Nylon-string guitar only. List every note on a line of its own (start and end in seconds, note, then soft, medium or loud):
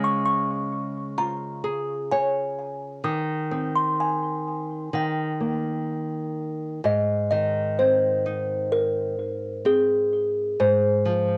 0.00 3.01 C#3 medium
0.00 1.61 G#3 medium
1.18 3.01 F4 medium
1.64 3.00 G#4 medium
2.12 3.03 C#5 medium
3.04 4.89 D#3 medium
3.51 4.89 C4 soft
4.93 6.80 D#3 medium
5.40 6.80 A#3 soft
6.84 10.54 G#2 medium
7.32 9.15 D#3 soft
7.79 9.62 C4 soft
8.26 10.08 D#4 soft
9.65 10.56 C4 medium
10.60 11.37 G#2 medium
11.05 11.37 F3 soft